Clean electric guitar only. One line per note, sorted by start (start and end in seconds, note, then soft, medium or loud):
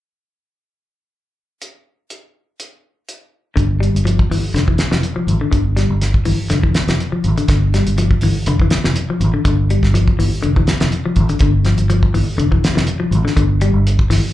3.56 3.70 D3 medium
3.80 3.95 G3 medium
4.05 4.20 F3 medium
4.31 4.45 E3 medium
4.54 4.62 D3 medium
4.68 4.82 E3 medium
4.91 5.06 E3 medium
5.16 5.31 F3 medium
5.41 5.48 D3 medium
5.51 5.66 D3 medium
5.76 5.91 G3 medium
6.25 6.40 E3 medium
6.50 6.58 D3 medium
6.63 6.78 E3 medium
6.89 7.03 E3 medium
7.12 7.27 F3 medium
7.38 7.44 D3 medium
7.49 7.64 D3 medium
7.74 7.88 G3 medium
7.98 8.13 F3 medium
8.23 8.38 E3 medium
8.48 8.55 D3 medium
8.62 8.76 E3 medium
8.85 9.00 E3 medium
9.10 9.24 F3 medium
9.34 9.41 D3 medium
9.45 9.59 D3 medium
9.71 9.85 G3 medium
9.94 10.09 F3 medium
10.19 10.33 E3 medium
10.43 10.51 D3 medium
10.57 10.71 E3 medium
10.81 10.96 E3 medium
11.06 11.20 F3 medium
11.30 11.37 D3 medium
11.42 11.56 D3 medium
11.66 11.81 F3 medium
11.90 12.04 F3 medium
12.14 12.29 E3 medium
12.38 12.46 D3 medium
12.52 12.66 E3 medium
12.75 12.90 E3 medium
13.00 13.15 F3 medium
13.25 13.32 D3 medium
13.37 13.51 D3 medium
13.62 13.76 G3 medium
14.10 14.25 E3 medium